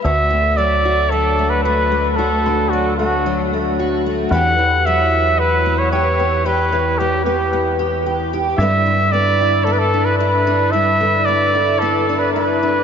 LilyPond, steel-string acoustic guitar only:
\new Staff \with { instrumentName = "Steel-string acoustic guitar" } { \time 4/4 \key d \major \tempo 4 = 112 << { fis'4 fis8 fis'8 fis8 a8 fis'8 a8 | fis'4 fis8 a8 fis8 a8 fis'8 a8 | <e b g'>4 fis4 r8 b8 g'8 b8 | g'4 b8 b8 b8 g'8 g'8 g'8 |
<d b d' e'>4 b8 e'8 b8 d'8 e'8 d'8 | e'4 b8 e'8 b8 d'8 e'8 d'8 | } \\ { d,8 d2.~ d8 | d,8 d2.~ d8 | e,8 e2.~ e8 | e,8 e2.~ e8 |
g,8 d2.~ d8 | g,8 d2.~ d8 | } >> }